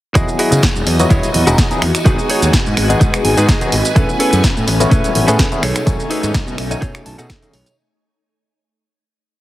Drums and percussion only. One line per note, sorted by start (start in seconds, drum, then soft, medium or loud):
0.15 kick loud
0.15 closed hi-hat medium
0.15 tambourine medium
0.15 high conga loud
0.15 shaker medium
0.28 tambourine soft
0.28 shaker soft
0.39 open hi-hat loud
0.52 closed hi-hat medium
0.52 tambourine medium
0.52 high conga medium
0.52 shaker medium
0.63 kick loud
0.63 snare loud
0.63 closed hi-hat medium
0.63 shaker medium
0.75 tambourine soft
0.75 shaker soft
0.87 open hi-hat medium
0.99 closed hi-hat medium
0.99 tambourine medium
0.99 high conga loud
0.99 shaker medium
1.10 kick loud
1.10 closed hi-hat medium
1.10 tambourine medium
1.10 shaker medium
1.23 closed hi-hat soft
1.23 tambourine soft
1.23 low conga medium
1.23 shaker soft
1.34 open hi-hat loud
1.34 high conga medium
1.47 closed hi-hat medium
1.47 tambourine medium
1.47 shaker medium
1.58 kick loud
1.58 snare loud
1.58 closed hi-hat medium
1.58 shaker medium
1.70 closed hi-hat soft
1.70 tambourine soft
1.70 high conga loud
1.70 shaker soft
1.82 finger snap medium
1.82 open hi-hat medium
1.95 finger snap medium
1.95 closed hi-hat medium
1.95 tambourine medium
1.95 shaker medium
2.06 kick loud
2.06 closed hi-hat medium
2.06 tambourine medium
2.06 high conga loud
2.06 shaker medium
2.18 tambourine soft
2.18 shaker soft
2.30 open hi-hat loud
2.42 closed hi-hat medium
2.42 tambourine medium
2.42 high conga medium
2.42 shaker medium
2.53 kick loud
2.53 snare loud
2.53 closed hi-hat medium
2.53 shaker medium
2.66 tambourine soft
2.66 shaker soft
2.77 finger snap medium
2.77 open hi-hat medium
2.89 closed hi-hat medium
2.89 tambourine medium
2.89 high conga loud
2.89 shaker medium
3.01 kick loud
3.01 closed hi-hat medium
3.01 tambourine medium
3.01 shaker medium
3.14 finger snap medium
3.14 closed hi-hat soft
3.14 tambourine soft
3.14 shaker soft
3.24 open hi-hat loud
3.24 high conga medium
3.37 closed hi-hat medium
3.37 tambourine medium
3.37 shaker medium
3.49 kick loud
3.49 snare loud
3.49 closed hi-hat medium
3.49 shaker medium
3.61 closed hi-hat soft
3.61 tambourine soft
3.61 high conga loud
3.61 shaker soft
3.72 open hi-hat loud
3.85 closed hi-hat medium
3.85 tambourine medium
3.85 shaker medium
3.96 kick loud
3.96 closed hi-hat medium
3.96 tambourine medium
3.96 high conga loud
3.96 shaker medium
4.09 tambourine soft
4.09 shaker soft
4.20 open hi-hat loud
4.33 closed hi-hat medium
4.33 tambourine medium
4.33 high conga medium
4.33 shaker medium
4.44 kick loud
4.44 snare loud
4.44 closed hi-hat medium
4.44 shaker medium
4.57 tambourine soft
4.57 shaker soft
4.68 open hi-hat loud
4.80 closed hi-hat medium
4.80 tambourine medium
4.80 high conga loud
4.80 shaker medium
4.91 kick loud
4.91 closed hi-hat medium
4.91 tambourine medium
4.91 shaker medium
5.04 closed hi-hat soft
5.04 tambourine soft
5.04 low conga loud
5.04 shaker soft
5.15 open hi-hat loud
5.15 high conga medium
5.28 closed hi-hat medium
5.28 tambourine medium
5.28 shaker medium
5.39 kick loud
5.39 snare loud
5.39 closed hi-hat medium
5.39 shaker medium
5.52 closed hi-hat soft
5.52 tambourine soft
5.52 high conga medium
5.52 shaker soft
5.63 finger snap medium
5.63 open hi-hat loud
5.75 finger snap medium
5.75 closed hi-hat medium
5.75 tambourine medium
5.75 shaker medium
5.87 kick loud
5.87 closed hi-hat medium
5.87 tambourine medium
5.87 high conga loud
5.87 shaker medium
5.99 tambourine soft
5.99 shaker soft
6.11 open hi-hat loud
6.23 closed hi-hat medium
6.23 tambourine medium
6.23 high conga medium
6.23 shaker medium
6.34 kick loud
6.34 snare loud
6.34 closed hi-hat medium
6.34 shaker medium
6.47 tambourine soft
6.47 low conga medium
6.47 shaker soft
6.58 finger snap medium
6.58 open hi-hat medium
6.71 closed hi-hat medium
6.71 tambourine medium
6.71 high conga medium
6.71 shaker medium
6.82 kick loud
6.82 closed hi-hat medium
6.82 shaker medium
6.95 finger snap medium
6.95 closed hi-hat soft
6.95 shaker soft
7.06 open hi-hat loud
7.06 high conga medium
7.19 closed hi-hat medium
7.19 tambourine medium
7.19 shaker medium
7.30 finger snap medium
7.30 kick loud
7.30 snare loud
7.30 closed hi-hat medium
7.30 shaker medium
7.42 closed hi-hat soft
7.42 tambourine soft
7.42 high conga loud
7.42 shaker soft
7.53 open hi-hat loud
7.66 closed hi-hat medium
7.66 tambourine medium
7.66 shaker medium